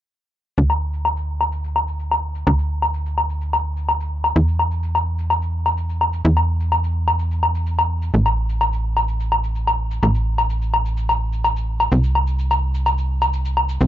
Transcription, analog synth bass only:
0.58 2.44 D2 medium
2.47 4.34 D2 medium
4.36 6.22 E2 medium
6.25 8.11 E2 medium
8.14 10.00 A1 medium
10.03 11.89 A1 medium
11.92 13.78 C2 medium
13.81 13.87 C2 medium

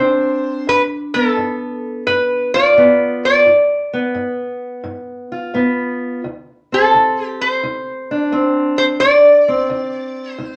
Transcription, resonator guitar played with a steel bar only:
0.00 0.68 C5 medium
0.69 0.82 B4 medium
1.14 2.06 A4 medium
2.07 2.51 B4 medium
2.54 3.24 D5 medium
3.25 4.12 D5 medium
6.74 7.26 A4 medium
7.26 7.44 G4 medium
7.41 8.77 C5 medium
8.78 8.84 C5 medium
9.00 10.32 D5 medium
10.32 10.56 C5 medium

